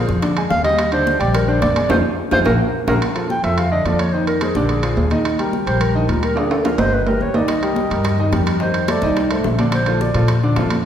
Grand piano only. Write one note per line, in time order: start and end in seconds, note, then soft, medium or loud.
0.00 0.17 F3 medium
0.00 0.18 F4 medium
0.00 0.18 F5 medium
0.22 0.34 D3 medium
0.22 0.34 D4 medium
0.22 0.34 D5 medium
0.36 0.59 G#3 medium
0.36 0.60 G#4 medium
0.36 0.60 G#5 medium
0.64 0.87 G3 medium
0.64 0.87 G4 medium
0.64 0.88 G5 medium
0.92 1.15 D3 medium
0.92 1.15 D4 medium
0.92 1.15 D5 medium
1.19 1.43 G3 medium
1.19 1.43 G4 medium
1.19 1.43 G5 medium
1.48 1.71 D3 medium
1.48 1.71 D4 medium
1.48 1.71 D5 medium
1.76 1.88 G#3 medium
1.76 1.88 G#4 medium
1.76 1.88 G#5 medium
1.89 1.98 D#4 medium
1.89 1.98 F4 medium
1.89 1.98 G#4 medium
2.31 2.41 D#4 medium
2.31 2.41 F4 medium
2.31 2.41 G#4 medium
2.45 2.55 F#4 medium
2.45 2.55 G#4 loud
2.45 2.55 A#4 medium
2.88 2.97 F#4 medium
2.88 2.97 G#4 medium
2.88 2.97 A#4 medium
3.15 3.38 F3 medium
3.15 3.39 F4 medium
3.15 3.39 A4 medium
3.43 3.66 F3 medium
3.43 3.67 F4 medium
3.43 3.67 A4 medium
3.71 3.83 D3 medium
3.71 3.83 D4 medium
3.71 3.83 D5 medium
3.86 4.09 F3 medium
3.86 4.09 F4 medium
3.86 4.09 A4 medium
4.14 4.37 D#3 medium
4.14 4.37 D#4 medium
4.14 4.37 D#5 medium
4.42 4.53 G#3 medium
4.42 4.53 G#4 medium
4.42 4.54 C5 medium
4.56 4.79 D3 medium
4.56 4.79 D4 medium
4.56 4.79 D5 medium
4.83 5.06 F3 medium
4.83 5.07 F4 medium
4.83 5.07 G#4 medium
5.11 5.34 D#3 medium
5.11 5.34 D#4 medium
5.11 5.35 D#5 medium
5.39 5.62 G3 medium
5.39 5.62 G4 medium
5.39 5.62 A#4 medium
5.67 5.90 G3 medium
5.67 5.90 G4 medium
5.67 5.90 A#4 medium
5.95 6.07 D#3 medium
5.95 6.07 D#4 medium
5.95 6.07 D#5 medium
6.08 6.32 G3 medium
6.08 6.32 G4 medium
6.08 6.32 A#4 medium
6.35 6.59 D3 medium
6.35 6.59 D4 medium
6.35 6.59 D5 medium
6.64 6.76 F3 medium
6.64 6.76 F4 medium
6.64 6.76 G#4 medium
6.77 7.01 D#3 medium
6.77 7.02 D#4 medium
6.77 7.02 D#5 medium
7.07 7.30 G3 medium
7.07 7.30 G4 medium
7.07 7.30 B4 medium
7.34 7.58 D#3 medium
7.34 7.58 D#4 medium
7.34 7.58 D#5 medium
7.63 7.86 G3 medium
7.63 7.86 G4 medium
7.63 7.86 A#4 medium
7.91 8.14 G3 medium
7.91 8.14 G4 medium
7.91 8.15 A#4 medium
8.20 8.31 D#3 medium
8.20 8.31 D#4 medium
8.20 8.31 D#5 medium
8.33 8.56 G3 medium
8.33 8.56 G4 medium
8.33 8.56 A#4 medium
8.61 8.84 D#3 medium
8.61 8.84 D#4 medium
8.61 8.84 D#5 medium
8.89 9.00 A3 medium
8.89 9.01 A4 medium
8.89 9.01 C5 medium
9.03 9.26 D#3 medium
9.03 9.26 D#4 medium
9.03 9.26 D#5 medium
9.31 9.54 A3 medium
9.31 9.54 A4 medium
9.31 9.54 C5 medium
9.59 9.82 D3 medium
9.59 9.82 D4 medium
9.59 9.82 D5 medium
9.87 10.10 F3 medium
9.87 10.10 F4 medium
9.87 10.10 A4 medium
10.15 10.38 F3 medium
10.15 10.38 F4 medium
10.15 10.38 A4 medium
10.43 10.55 D3 medium
10.43 10.55 D4 medium
10.43 10.55 D5 medium
10.59 10.81 F3 medium
10.59 10.81 F4 medium
10.59 10.81 A4 medium